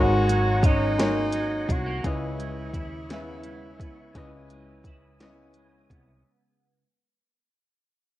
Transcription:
Already playing: G#1 G#2 D#3 G#3 A#3 D#4 F#4 A#4 C#5 F#5 G#5 A#5 C#6
0.29 F#3, closed hi-hat
0.63 C#4 D#4, kick, closed hi-hat
0.99 G#3 A#3 D#4 F#4 A#4 C#5, snare, closed hi-hat
1.33 F#3, closed hi-hat
1.67 C2 G#3, kick, closed hi-hat
1.72 F#4
1.86 A#3
2.03 C#2 C#3 C#4 E4 B4 D#5 G#5, kick, closed hi-hat
2.38 G#3, closed hi-hat
2.74 D#2 E4, kick, closed hi-hat
3.09 C#3 B3 C#4 E4 B4, snare, closed hi-hat
3.13 E5
3.43 G#3, closed hi-hat
3.78 C2 B3, kick, closed hi-hat
4.13 C#2 C#3 C#4 E4 B4 D#6, kick, closed hi-hat
4.18 D#5
4.50 G#3, closed hi-hat
4.84 E4, kick, closed hi-hat
5.20 C#3 B3 C#4 E4 B4 D#5, snare, closed hi-hat
5.54 G#3, closed hi-hat
5.90 C2 B3, kick, closed hi-hat

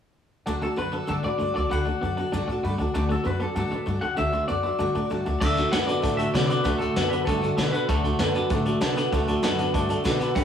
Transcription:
0.46 D2 D3 A3 D4 F#4 A4 D5 F#5 A5
0.62 D3 A3 D4 F#4 A4 D5 F#5 A5
0.76 F#2 D3 A3 B3 D4 F#4 A4 B4 D5 F#5 A5
0.92 D3 B3 D4 F#4 A4 D5 F#5 A5
1.07 G2 D3 A3 D4 F#4 A4 D5 F#5 A5
1.23 A2 D3 A3 D4 F#4 A4 D5 F#5 A5
1.38 G2 D3 A3 D4 F#4 D5 F#5 C6
1.42 A4
1.53 D2 D3 A3 A4 D5 F#5 A5
1.57 D4 F#4
1.70 D2 D3 A3 D4 F#4 D5 F#5 B5
1.74 A4
1.86 D3 A3 D4 F#4 A4 D5 F#5 A5
2.01 F#2 D3 A3 B3 D4 F#4 A4 D5 F#5 A5
2.16 D3 B3 F#4 A4 D5 F#5 A5
2.21 D4
2.32 G2 D3 A3 D4 F#4 A4 D5 F#5 A5
2.47 A2 D3 A3 F#4 A4 D5 F#5 A5
2.52 D4
2.63 G2 D3 A3 D4 F#4 A4 D5 F#5 B5
2.78 D2 D3 A3 D4 F#4 A4 D5 F#5 A5
2.94 D2 D3 A3 D4 F#4 A4 D5 F#5 A5
3.09 D3 A3 F#4 A4 D5 F#5 A5
3.14 D4
3.24 F#2 D3 A3 B3 D4 F#4 A4 B4 D5 F#5 A5
3.39 D3 B3 D4 F#4 A4 D5 F#5 A5
3.55 G2 D3 A3 D4 F#4 A4 D5 F#5 A5
3.71 A2 D3 A3 D4 F#4 A4 D5 F#5 A5
3.86 G2 D3 A3 D4 F#4 A4 D5 F#5 A5
4.01 D2 D3 A3 D4 F#4 A4 D5 F#5 A5
4.17 D2 D3 A3 D4 F#4 A4 D5 E5 F#5 A5
4.32 D3 A3 D4 F#4 A4 D5 F#5 C6
4.48 F#2 D3 A3 B3 D4 F#4 A4 D5 F#5 A5
4.63 D3 B3 D4 F#4 A4 D5 F#5 C6
4.79 G2 D3 A3 D4 F#4 A4 D5 F#5 A5
4.95 A2 D3 A3 D4 F#4 A4 D5 F#5 A5
5.10 G2 D3 A3 D4 F#4 A4 D5 F#5 A5
5.25 D2 D3 A3 D4 F#4 A4 D5 F#5 A5
5.40 D2 D3 A3 D4 F#4 A4 D5 E5 F#5 A5, kick, crash
5.56 D3 A3 D4 F#4 A4 D5 F#5 A5, snare, closed hi-hat
5.71 F#2 D3 A3 B3 D4 F#4 A4 D5 F#5 A5, snare, closed hi-hat
5.87 D3 B3 D4 F#4 A4 D5 F#5 A5, closed hi-hat
6.02 A2 D3 A3 D4 F#4 A4 D5 F#5 A5, kick, closed hi-hat
6.17 D3 A3 D4 F#4 A4 D5 E5 F#5 A5, closed hi-hat
6.34 C3 D3 A3 B3 D4 F#4 A4 D5 F#5 A5, snare, closed hi-hat
6.48 D3 B3 F#4 A4 D5 F#5 A5, closed hi-hat
6.52 D4
6.64 D2 D3 A3 D4 F#4 A4 B4 D5 F#5 A5, kick, closed hi-hat
6.78 D3 A3 D4 F#4 A4 D5 F#5 A5, closed hi-hat
6.96 F#2 D3 A3 B3 D4 F#4 A4 D5 F#5 A5, snare, closed hi-hat
7.10 D3 B3 D4 F#4 A4 B4 D5 F#5 B5, closed hi-hat
7.25 G2 D3 A3 D4 F#4 A4 D5 F#5 A5, kick, closed hi-hat
7.41 D3 A3 D4 F#4 A4 D5 F#5 A5, closed hi-hat
7.57 B2 D3 A3 B3 D4 F#4 A4 F#5 A5, snare, closed hi-hat
7.72 D3 B3 D4 F#4 A4 B4 D5 F#5 A5, closed hi-hat
7.88 D2 D3 A3 D4 F#4 A4 D5 F#5 A5, kick, closed hi-hat
8.04 D3 A3 D4 F#4 A4 D5 F#5 A5, closed hi-hat
8.19 F#2 D3 A3 B3 D4 F#4 A4 D5 F#5 A5, snare, closed hi-hat
8.34 D3 B3 D4 F#4 A4 D5 F#5 A5, closed hi-hat
8.50 A2 D3 A3 D4 F#4 A4 D5 F#5 A5, kick, closed hi-hat
8.65 D3 A3 D4 F#4 A4 D5 F#5 A5, closed hi-hat
8.81 C3 D3 A3 B3 D4 F#4 A4 D5 F#5 A5, snare, closed hi-hat
8.96 D3 B3 D4 F#4 A4 D5 F#5 A5, snare, closed hi-hat
9.11 D2 D3 A3 D4 F#4 A4 D5 F#5 A5, kick, closed hi-hat
9.28 D3 A3 D4 F#4 A4 D5 F#5 A5, closed hi-hat
9.43 F#2 D3 A3 B3 D4 F#4 A4 D5 F#5 A5, snare, closed hi-hat
9.58 D3 B3 D4 F#4 A4 D5 F#5 A5, closed hi-hat
9.74 G2 D3 A3 D4 F#4 A4 D5 F#5 A5, kick, closed hi-hat
9.89 D3 A3 D4 F#4 A4 D5 F#5 A5, closed hi-hat
10.04 B2 D3 A3 B3 D4 F#4 A4 D5 F#5 A5, kick, snare, closed hi-hat
10.20 D3 B3 D4 F#4 A4 D5 F#5 B5, snare, closed hi-hat
10.35 G1 G2 D3 G3 D4 G4 B4 D5 F#5 G5 B5, kick, closed hi-hat

